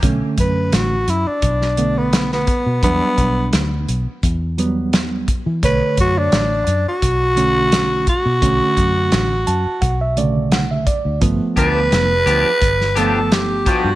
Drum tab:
HH |x-x-x-x-x-x-x-x-|x-x-x-x-x-x-x-x-|x-x-x-x-x-x-x-x-|x-x-x-x-x-x-x-x-|
SD |----o----o--oo--|----o-------o---|----o-------o---|----o-------o---|
BD |o-o-----o-----o-|o-o-----o-----o-|o-o-----o-----o-|o-o-----o-----o-|

HH |x-x-x-x-x-x-x-x-|
SD |----o----o--o---|
BD |o-o-----o-----o-|